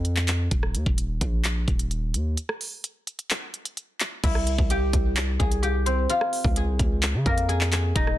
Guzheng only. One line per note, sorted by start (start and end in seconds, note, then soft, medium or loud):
4.24 6.16 E4 medium
4.24 5.97 E5 medium
4.70 5.45 G4 medium
4.70 5.45 G5 medium
5.39 5.69 G#4 medium
5.39 5.69 G#5 medium
5.63 6.63 G4 medium
5.63 6.63 G5 medium
5.86 8.18 C4 medium
5.86 7.84 C5 medium
6.10 8.18 F4 loud
6.10 7.77 F5 medium
6.57 7.48 G#4 medium
6.57 7.49 G#5 medium
7.26 8.18 A#3 medium
7.26 8.18 A#4 medium
7.49 7.72 G#4 medium
7.49 7.73 G#5 medium
7.72 8.18 G#4 medium
7.72 8.18 G#5 medium
7.95 8.18 D#4 loud
7.95 8.18 D#5 medium